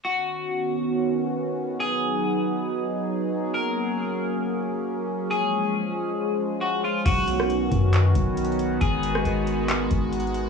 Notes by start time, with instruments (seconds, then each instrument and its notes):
0.05 analog synth pad D#3 B3 C#4 F#4, clean electric guitar F#4
1.80 analog synth pad F#3 D#4 G#4, clean electric guitar G#4
3.54 analog synth pad A#3 C#4, clean electric guitar A#4
5.30 analog synth pad F3 G#3, clean electric guitar G#4
6.61 clean electric guitar F#4
6.85 clean electric guitar F4
7.06 808-style bass B1, analog synth pad D#3 B3 C#4 F#4, clean electric guitar F#4, kick, closed hi-hat, crash
7.28 closed hi-hat
7.40 cross-stick
7.50 closed hi-hat
7.72 808-style bass F#2, kick, closed hi-hat
7.93 clap, closed hi-hat
8.15 808-style bass B1, kick, closed hi-hat
8.37 closed hi-hat
8.45 closed hi-hat
8.52 closed hi-hat
8.59 closed hi-hat
8.81 808-style bass G#1, analog synth pad G#3 F#4, clean electric guitar G#4, kick, closed hi-hat
9.03 closed hi-hat
9.15 cross-stick
9.25 808-style bass G#1, closed hi-hat
9.47 closed hi-hat
9.68 clap, closed hi-hat
9.91 808-style bass G#1, kick, closed hi-hat
10.12 closed hi-hat
10.20 closed hi-hat
10.27 closed hi-hat
10.34 closed hi-hat